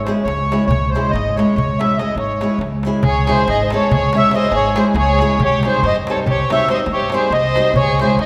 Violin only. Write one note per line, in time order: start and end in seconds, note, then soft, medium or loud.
3.04 3.26 G#4 medium
3.26 3.46 G#4 medium
3.47 3.62 G#4 medium
3.63 3.70 C5 soft
3.73 3.90 A4 medium
3.91 4.12 G#4 medium
4.16 4.33 C#5 medium
4.35 4.52 C5 medium
4.53 4.75 G#4 medium
4.75 4.84 G#4 medium
4.95 5.36 G#4 medium
5.42 5.63 G4 medium
5.66 5.83 G#4 medium
5.85 5.95 C5 medium
6.10 6.19 A4 medium
6.28 6.48 G4 medium
6.52 6.68 C#5 medium
6.71 6.79 C5 medium
6.94 7.13 G4 medium
7.16 7.32 G#4 medium
7.37 7.75 C5 medium
7.81 8.00 G#4 medium
8.03 8.19 G#4 medium